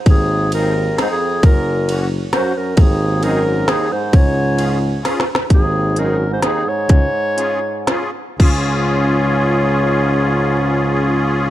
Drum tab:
CC |---------|---------|---------|---------|
RD |x--x--x--|x--x--x--|x--x--x--|x--x--x--|
HH |---------|---------|---------|---------|
SD |------o--|------o--|------o--|------ooo|
BD |o--------|o--------|o--------|o--------|

CC |---------|---------|x--------|---------|
RD |---------|---------|---------|---------|
HH |x--x--x--|x--x--x--|---------|---------|
SD |------o--|------o--|---------|---------|
BD |o--------|o--------|o--------|---------|